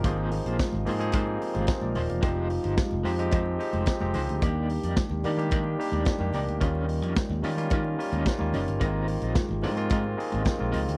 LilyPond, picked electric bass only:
\new Staff \with { instrumentName = "Picked electric bass" } { \clef bass \time 4/4 \key ees \major \tempo 4 = 109 aes,,8. bes,,16 r16 aes,,16 aes,8 aes,8 r16 aes,,16 r16 bes,,16 ees,,16 fes,,16 | f,,8. g,,16 r16 f,,16 f,8 f,8 r16 f,,16 r16 f,,16 des,16 d,16 | ees,8. f,16 r16 ees,16 ees8 ees8 r16 ees,16 r16 f,16 des,16 d,16 | ees,8. f,16 r16 ees,16 ees8 ees8 r16 ees,16 r16 ees,16 ges,,16 g,,16 |
aes,,8. bes,,16 r16 aes,,16 aes,8 aes,8 r16 aes,,16 r16 bes,,16 des,16 d,16 | }